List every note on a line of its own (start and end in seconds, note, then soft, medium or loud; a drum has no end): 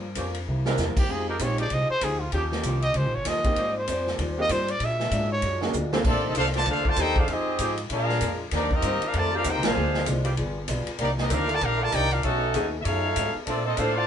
0.00 0.15 G2 medium
0.15 0.46 F2 medium
0.15 0.36 G2 medium
0.15 0.36 F3 medium
0.15 0.29 F3 medium
0.15 0.37 A#3 medium
0.15 0.30 A#3 medium
0.15 0.29 C#4 medium
0.15 0.37 C#4 medium
0.15 0.30 G4 medium
0.15 kick soft
0.15 hi-hat pedal medium
0.15 ride medium
0.35 ride medium
0.47 0.77 C2 medium
0.47 0.67 C3 medium
0.47 0.68 A#3 medium
0.47 0.68 E4 medium
0.47 0.68 G4 medium
0.66 1.07 E3 loud
0.66 0.77 A#3 medium
0.66 1.07 A#3 medium
0.66 1.07 C4 loud
0.66 0.77 C4 medium
0.66 0.78 D4 medium
0.66 0.78 E4 medium
0.66 0.78 G4 medium
0.66 1.07 A#4 loud
0.66 snare medium
0.77 0.96 E2 medium
0.77 0.98 C3 medium
0.77 0.98 A#3 medium
0.77 0.99 E4 medium
0.77 0.99 G4 medium
0.77 snare medium
0.77 hi-hat pedal medium
0.97 1.13 G4 loud
0.97 kick medium
0.97 crash medium
1.09 1.39 F2 medium
1.09 1.30 F3 soft
1.09 1.26 G#3 medium
1.09 1.30 G#3 soft
1.09 1.26 C4 soft
1.09 1.26 D#4 medium
1.09 1.30 D#4 medium
1.09 1.27 F4 medium
1.09 1.27 G4 medium
1.09 1.31 G4 medium
1.09 1.29 G#4 medium
1.09 kick soft
1.28 1.37 F3 loud
1.28 1.37 G#3 medium
1.28 1.37 D#4 medium
1.28 1.37 G4 loud
1.28 1.44 A#4 medium
1.39 1.70 A#1 loud
1.39 1.60 F3 medium
1.39 1.57 G#3 medium
1.39 1.61 G#3 medium
1.39 1.57 C4 medium
1.39 1.57 D#4 medium
1.39 1.61 D#4 medium
1.39 1.58 F4 medium
1.39 1.58 G4 medium
1.39 1.61 G4 medium
1.39 1.60 C#5 loud
1.39 kick soft
1.39 hi-hat pedal medium
1.39 ride medium
1.58 1.68 F3 loud
1.58 1.68 G#3 medium
1.58 1.68 D#4 medium
1.58 1.68 G4 loud
1.58 1.75 D5 loud
1.58 ride medium
1.70 1.89 C2 medium
1.70 1.91 F3 medium
1.70 1.91 G#3 medium
1.70 1.92 D#4 medium
1.70 1.92 G4 medium
1.70 1.90 D#5 loud
1.70 kick soft
1.70 ride medium
1.89 2.05 C5 loud
1.89 muted upright bass stroke soft
2.01 2.32 D2 medium
2.01 2.22 F3 medium
2.01 2.23 G#3 medium
2.01 2.23 D#4 medium
2.01 2.23 G4 medium
2.01 2.21 G#4 loud
2.01 kick soft
2.01 hi-hat pedal medium
2.01 ride medium
2.20 2.33 F4 medium
2.32 2.63 D#2 medium
2.32 2.53 D#3 medium
2.32 3.19 F3 loud
2.32 2.53 C#4 medium
2.32 3.19 C#4 loud
2.32 3.19 D#4 medium
2.32 2.54 F4 medium
2.32 2.45 G4 loud
2.32 3.19 G4 loud
2.32 2.54 G4 medium
2.32 kick soft
2.32 ride medium
2.52 snare medium
2.63 2.93 C2 loud
2.63 2.84 D#3 medium
2.63 2.85 C#4 medium
2.63 2.85 F4 medium
2.63 2.85 G4 medium
2.63 kick soft
2.63 hi-hat pedal medium
2.63 ride medium
2.82 2.98 D#5 loud
2.82 ride medium
2.94 3.05 C#2 medium
2.94 3.15 D#3 medium
2.94 3.16 C#4 medium
2.94 3.16 F4 medium
2.94 3.17 G4 medium
2.94 3.16 C5 medium
2.94 kick soft
2.94 ride medium
3.05 3.14 A#1 medium
3.15 3.25 G1 medium
3.15 3.30 C#5 loud
3.25 3.56 D#2 medium
3.25 3.46 D#3 medium
3.25 3.46 C#4 medium
3.25 3.47 F4 medium
3.25 3.47 G4 medium
3.25 3.77 D#5 loud
3.25 kick soft
3.25 snare soft
3.25 hi-hat pedal medium
3.25 ride medium
3.44 3.56 A#3 medium
3.44 3.56 C4 medium
3.44 3.56 D#4 medium
3.44 3.56 F4 medium
3.44 3.56 G4 medium
3.44 kick medium
3.44 ride medium
3.56 3.77 G#2 soft
3.56 3.87 G#2 medium
3.56 4.43 F3 medium
3.56 3.77 G3 medium
3.56 4.43 A#3 medium
3.56 4.43 C4 medium
3.56 3.78 C4 medium
3.56 3.78 F4 medium
3.56 4.43 G4 loud
3.56 kick soft
3.56 ride medium
3.78 4.17 C5 medium
3.87 4.18 F2 medium
3.87 4.08 G#2 medium
3.87 4.08 G3 medium
3.87 4.09 C4 medium
3.87 4.09 F4 medium
3.87 kick soft
3.87 hi-hat pedal medium
3.87 ride medium
4.07 snare soft
4.18 4.49 D#2 loud
4.18 4.39 G#2 medium
4.18 4.39 G3 medium
4.18 4.39 C4 medium
4.18 4.40 F4 medium
4.18 kick soft
4.18 ride medium
4.38 4.49 A#3 medium
4.38 4.49 C4 medium
4.38 4.49 D#4 medium
4.38 4.49 F4 medium
4.38 4.49 G4 loud
4.38 4.53 D#5 loud
4.49 4.80 G2 medium
4.49 4.70 G#2 medium
4.49 4.70 G3 medium
4.49 4.70 C4 medium
4.49 4.70 F4 medium
4.49 4.72 C5 loud
4.49 kick soft
4.49 hi-hat pedal medium
4.49 ride medium
4.68 4.86 D5 loud
4.68 ride medium
4.80 5.10 A#2 loud
4.80 5.01 A#2 medium
4.80 5.01 G#3 medium
4.80 5.02 D4 medium
4.80 5.02 F#4 medium
4.80 kick soft
4.80 ride medium
4.85 5.31 E5 loud
5.00 snare medium
5.11 5.42 G#2 loud
5.11 5.32 A#2 medium
5.11 5.32 G#3 medium
5.11 5.32 D4 medium
5.11 5.33 F#4 medium
5.11 kick soft
5.11 hi-hat pedal medium
5.11 ride medium
5.32 5.71 C#5 loud
5.42 5.72 F#2 loud
5.42 5.63 A#2 soft
5.42 5.63 G#3 medium
5.42 5.63 D4 medium
5.42 5.64 F#4 medium
5.42 kick soft
5.42 ride medium
5.61 5.72 A#3 medium
5.61 5.72 C#4 medium
5.61 5.72 D4 medium
5.61 5.73 F#4 medium
5.61 5.72 G#4 medium
5.61 snare medium
5.73 6.04 D2 loud
5.73 5.93 A#2 medium
5.73 5.94 G#3 medium
5.73 5.94 D4 medium
5.73 5.94 F#4 medium
5.73 hi-hat pedal medium
5.92 6.00 D3 loud
5.92 6.00 A#3 loud
5.92 6.33 A#3 medium
5.92 6.01 C4 loud
5.92 6.33 C4 medium
5.92 6.33 D4 medium
5.92 6.33 F4 medium
5.92 6.34 G4 medium
5.92 6.01 A4 loud
5.92 snare medium
6.04 6.16 A#1 medium
6.04 6.22 F3 medium
6.04 6.22 A3 medium
6.04 6.24 A#3 soft
6.04 6.23 C4 medium
6.04 6.22 D4 medium
6.04 6.25 D4 medium
6.04 6.23 F4 medium
6.04 6.25 A4 medium
6.04 6.24 A4 medium
6.04 6.26 C5 medium
6.04 6.24 D5 loud
6.04 kick medium
6.04 crash medium
6.16 6.25 A1 medium
6.23 6.35 F1 medium
6.23 6.37 C4 medium
6.23 6.35 D#4 medium
6.23 6.37 F4 medium
6.23 6.36 A4 medium
6.23 6.37 D#5 medium
6.35 6.65 C2 medium
6.35 6.44 A3 medium
6.35 6.56 A#3 medium
6.35 6.44 D4 medium
6.35 6.56 D4 medium
6.35 6.46 D4 medium
6.35 6.44 F4 medium
6.35 6.56 A4 medium
6.35 6.46 A4 loud
6.35 6.56 C5 medium
6.35 6.46 C5 medium
6.35 6.45 F5 loud
6.35 kick soft
6.35 hi-hat pedal medium
6.35 ride medium
6.46 snare soft
6.53 6.65 D3 medium
6.53 6.65 F3 medium
6.53 6.64 A3 medium
6.53 6.66 F4 loud
6.53 6.67 C5 medium
6.53 6.67 D5 medium
6.53 6.66 A5 loud
6.53 snare medium
6.53 ride medium
6.65 6.96 D2 medium
6.65 6.83 A3 medium
6.65 6.87 A#3 soft
6.65 6.83 D4 medium
6.65 6.85 D4 medium
6.65 6.88 D4 medium
6.65 6.83 F4 medium
6.65 6.85 A4 medium
6.65 6.85 C5 medium
6.65 6.85 F5 loud
6.65 kick soft
6.65 ride medium
6.69 6.88 A4 medium
6.69 6.88 C5 medium
6.84 6.97 D3 medium
6.84 6.97 F3 medium
6.84 6.97 A3 medium
6.84 6.98 F4 loud
6.84 6.98 C5 loud
6.84 6.99 D5 medium
6.84 6.99 A5 loud
6.84 kick medium
6.96 7.27 D#2 medium
6.96 7.18 A#3 medium
6.96 7.18 D4 medium
6.96 7.17 D#4 loud
6.96 7.16 G4 medium
6.96 7.17 A4 medium
6.96 7.19 A4 medium
6.96 7.17 C5 loud
6.96 7.19 C5 medium
6.96 7.17 G5 loud
6.96 kick soft
6.96 hi-hat pedal medium
6.96 ride medium
7.16 7.25 F3 loud
7.16 7.24 G#3 loud
7.16 7.28 A3 medium
7.16 7.28 D4 medium
7.16 7.29 D4 medium
7.16 7.24 D#4 loud
7.16 7.28 F4 medium
7.16 7.24 G4 loud
7.16 7.29 A4 medium
7.16 7.29 C5 medium
7.16 7.29 F5 medium
7.16 kick medium
7.27 7.58 F2 medium
7.27 7.48 F3 soft
7.27 7.77 G#3 medium
7.27 7.49 G#3 medium
7.27 7.78 C4 medium
7.27 7.78 D#4 loud
7.27 7.49 D#4 medium
7.27 7.79 G4 loud
7.27 kick soft
7.27 ride medium
7.31 7.79 C4 medium
7.31 7.50 G4 medium
7.31 7.79 G#4 loud
7.31 7.79 D#5 loud
7.59 7.89 G#2 medium
7.59 7.79 F3 medium
7.59 7.73 F3 loud
7.59 7.80 G#3 medium
7.59 7.73 G#3 medium
7.59 7.73 D#4 medium
7.59 7.80 D#4 medium
7.59 7.73 G4 loud
7.59 7.81 G4 medium
7.59 kick soft
7.59 hi-hat pedal medium
7.59 ride medium
7.78 ride medium
7.89 8.20 A#2 medium
7.89 8.11 A#2 soft
7.89 8.36 G#3 medium
7.89 8.11 G#3 medium
7.89 8.36 D4 medium
7.89 8.37 D4 medium
7.89 8.12 D4 medium
7.89 8.36 F4 loud
7.89 8.38 G#4 medium
7.89 8.38 A#4 medium
7.89 8.38 F5 loud
7.89 kick soft
7.89 ride medium
7.94 8.12 F4 medium
8.09 snare soft
8.21 8.51 F2 medium
8.21 8.42 A#2 medium
8.21 8.42 G#3 medium
8.21 8.42 D4 medium
8.21 8.43 F4 medium
8.21 kick soft
8.21 hi-hat pedal medium
8.21 ride loud
8.51 8.82 D#2 medium
8.51 8.72 D#3 medium
8.51 8.72 A#3 medium
8.51 8.71 A#3 medium
8.51 8.73 C4 medium
8.51 8.70 D4 medium
8.51 8.71 D#4 medium
8.51 8.73 G4 medium
8.51 8.71 G4 medium
8.51 8.71 D5 loud
8.51 kick soft
8.51 snare soft
8.51 ride medium
8.71 9.03 A#3 medium
8.71 9.03 C4 medium
8.71 9.04 C4 medium
8.71 9.03 D#4 medium
8.71 9.03 G4 medium
8.71 9.03 A#4 medium
8.71 9.04 D#5 loud
8.71 kick medium
8.82 9.00 G2 loud
8.82 9.03 D#3 medium
8.82 8.97 D#3 medium
8.82 9.03 A#3 medium
8.82 8.97 A#3 loud
8.82 9.04 C4 medium
8.82 8.97 C4 medium
8.82 9.04 G4 medium
8.82 8.97 G4 loud
8.82 kick soft
8.82 hi-hat pedal medium
8.82 ride medium
9.02 9.15 F4 medium
9.02 9.15 A#4 medium
9.02 9.16 F5 loud
9.02 muted upright bass stroke soft
9.02 ride medium
9.06 9.16 D4 medium
9.06 9.16 G4 medium
9.13 9.44 F2 loud
9.13 9.34 D#3 medium
9.13 9.33 A3 medium
9.13 9.34 A#3 medium
9.13 9.35 C4 medium
9.13 9.35 F4 medium
9.13 9.35 G4 medium
9.13 9.34 A#4 medium
9.13 9.34 D5 loud
9.13 9.34 A5 loud
9.13 kick soft
9.13 ride medium
9.32 9.74 D#3 loud
9.32 9.74 A#3 loud
9.32 9.74 C4 loud
9.32 9.44 F4 medium
9.32 9.74 G4 loud
9.32 9.46 G4 medium
9.32 9.46 F5 loud
9.37 9.46 D4 medium
9.37 9.46 A#4 medium
9.44 9.56 D#2 medium
9.44 9.65 D#3 medium
9.44 9.64 A#3 medium
9.44 9.65 A#3 medium
9.44 9.62 C4 medium
9.44 9.66 C4 medium
9.44 9.66 D#4 medium
9.44 9.64 G4 medium
9.44 9.66 G4 medium
9.44 9.65 A#4 medium
9.44 9.65 G5 loud
9.44 kick soft
9.44 hi-hat pedal medium
9.44 ride medium
9.48 9.65 C5 medium
9.56 9.65 C2 medium
9.63 9.75 A#1 medium
9.63 10.07 G#3 medium
9.63 10.07 C4 medium
9.63 10.08 D4 medium
9.63 10.07 F4 medium
9.63 10.08 G#4 medium
9.63 10.08 C5 medium
9.63 10.08 F5 loud
9.63 snare loud
9.63 ride medium
9.75 10.06 D2 medium
9.75 9.96 D3 soft
9.75 9.88 F3 medium
9.75 9.97 G#3 medium
9.75 9.88 C4 medium
9.75 9.97 C4 medium
9.75 9.88 D4 medium
9.75 9.97 F4 medium
9.75 9.88 G#4 medium
9.94 snare medium
10.06 10.37 C2 medium
10.06 10.27 D3 medium
10.06 10.27 G#3 medium
10.06 10.27 C4 medium
10.06 10.28 F4 medium
10.06 kick soft
10.06 hi-hat pedal medium
10.06 ride medium
10.24 10.33 G3 loud
10.24 10.33 B3 loud
10.24 10.33 F4 medium
10.24 10.33 G4 loud
10.24 ride medium
10.36 10.68 G1 loud
10.36 10.57 G3 medium
10.36 10.58 B3 medium
10.36 10.58 F4 medium
10.36 10.59 G#4 medium
10.36 kick soft
10.36 ride medium
10.68 10.86 B1 medium
10.68 10.88 G3 medium
10.68 10.89 B3 medium
10.68 10.89 F4 medium
10.68 10.89 G#4 medium
10.68 kick soft
10.68 hi-hat pedal medium
10.68 ride medium
10.87 muted upright bass stroke soft
10.87 ride medium
10.98 11.30 C2 medium
10.98 11.19 C3 soft
10.98 11.20 D#3 soft
10.98 11.08 G3 medium
10.98 11.07 A#3 medium
10.98 11.20 A#3 medium
10.98 11.09 A#3 medium
10.98 11.07 D4 medium
10.98 11.21 D4 medium
10.98 11.10 D#4 medium
10.98 11.10 G4 medium
10.98 11.10 D5 loud
10.98 kick soft
10.98 ride medium
11.17 11.29 G3 medium
11.17 11.29 A#3 medium
11.17 11.31 A#3 medium
11.17 11.30 D4 medium
11.17 11.29 D#4 medium
11.17 11.30 G4 medium
11.17 11.31 D#5 medium
11.17 snare medium
11.28 11.61 D2 loud
11.28 11.50 C3 medium
11.28 11.43 D#3 loud
11.28 11.50 D#3 medium
11.28 11.51 A#3 medium
11.28 11.43 C4 loud
11.28 11.43 D4 medium
11.28 11.51 D4 medium
11.28 11.50 D4 medium
11.28 11.48 F4 medium
11.28 11.50 G4 medium
11.28 11.42 A#4 loud
11.28 11.50 A#4 medium
11.28 11.50 F5 loud
11.28 kick soft
11.28 hi-hat pedal medium
11.28 ride medium
11.47 11.61 A3 medium
11.47 11.62 F4 medium
11.47 11.62 A#4 loud
11.47 11.63 D5 medium
11.47 11.63 A5 loud
11.47 ride medium
11.60 11.92 A#1 loud
11.60 11.81 C3 medium
11.60 11.82 D#3 soft
11.60 11.82 A#3 medium
11.60 11.83 D4 medium
11.60 11.82 D4 medium
11.60 11.80 F4 loud
11.60 11.81 G4 medium
11.60 11.80 A#4 medium
11.60 11.82 F5 loud
11.60 kick soft
11.60 ride medium
11.78 11.92 A3 medium
11.78 11.93 F4 medium
11.78 11.91 A#4 loud
11.78 11.92 D5 loud
11.78 11.94 A5 loud
11.90 12.23 C2 medium
11.90 12.13 C3 medium
11.90 12.13 D#3 medium
11.90 12.11 A#3 medium
11.90 12.13 A#3 medium
11.90 12.10 D#4 medium
11.90 12.12 D#4 loud
11.90 12.10 G4 medium
11.90 12.10 A#4 medium
11.90 12.12 D5 loud
11.90 12.12 G5 loud
11.90 kick soft
11.90 hi-hat pedal medium
11.90 ride medium
11.94 12.14 D4 medium
12.10 12.24 D4 medium
12.10 12.23 F4 medium
12.10 12.24 G4 medium
12.10 12.24 A#4 medium
12.10 12.24 F5 loud
12.10 ride medium
12.21 12.54 B1 medium
12.21 12.43 B2 soft
12.21 12.69 F#3 loud
12.21 12.69 A3 medium
12.21 12.44 A3 medium
12.21 12.70 C#4 loud
12.21 12.69 D#4 medium
12.21 12.44 D#4 medium
12.21 12.70 F#4 medium
12.21 12.45 G#4 medium
12.21 12.70 A4 medium
12.21 12.70 D#5 loud
12.21 kick soft
12.21 ride medium
12.54 12.85 D#2 loud
12.54 12.75 B2 medium
12.54 12.67 D#3 medium
12.54 12.75 A3 medium
12.54 12.68 A3 medium
12.54 12.68 C#4 medium
12.54 12.75 D#4 medium
12.54 12.68 G#4 loud
12.54 12.76 G#4 medium
12.54 kick soft
12.54 hi-hat pedal medium
12.54 ride medium
12.82 13.16 F#2 loud
12.82 13.06 B2 medium
12.82 13.34 F#3 medium
12.82 13.34 A3 medium
12.82 13.35 D#4 medium
12.82 13.34 F4 medium
12.82 13.36 A4 medium
12.82 13.35 C#5 medium
12.82 12.87 E5 medium
12.82 13.36 F5 loud
12.82 kick soft
12.82 ride medium
12.86 13.06 A3 medium
12.86 13.07 D#4 medium
12.86 13.07 G#4 medium
13.16 13.34 G#2 medium
13.16 13.37 B2 medium
13.16 13.37 A3 medium
13.16 13.37 D#4 medium
13.16 13.38 G#4 medium
13.16 kick soft
13.16 hi-hat pedal medium
13.16 ride medium
13.35 muted upright bass stroke soft
13.45 13.77 A#2 medium
13.45 13.64 F3 medium
13.45 13.64 A3 medium
13.45 13.68 A#3 medium
13.45 13.65 C4 medium
13.45 13.64 D4 medium
13.45 13.68 D4 soft
13.45 13.65 F4 medium
13.45 13.65 A4 medium
13.45 13.65 D5 loud
13.45 kick soft
13.45 ride medium
13.49 13.69 A4 medium
13.49 13.69 C5 medium
13.64 13.78 C4 medium
13.64 13.77 D#4 medium
13.64 13.78 F4 medium
13.64 13.76 A4 medium
13.64 13.78 D#5 medium
13.76 14.07 A2 loud
13.76 13.91 D3 medium
13.76 13.93 A3 medium
13.76 13.91 A#3 medium
13.76 13.99 A#3 medium
13.76 13.91 C4 medium
13.76 13.96 D4 medium
13.76 13.97 D4 medium
13.76 13.99 D4 medium
13.76 13.96 F4 medium
13.76 13.97 A4 medium
13.76 13.91 A4 loud
13.76 13.99 A4 medium
13.76 13.95 C5 medium
13.76 13.99 C5 medium
13.76 13.97 F5 loud
13.76 kick soft
13.76 hi-hat pedal medium
13.76 ride medium
13.94 14.07 D3 medium
13.94 14.07 F3 medium
13.94 14.06 A3 medium
13.94 14.07 F4 medium
13.94 14.07 C5 medium
13.94 14.07 D5 loud
13.94 14.07 A5 loud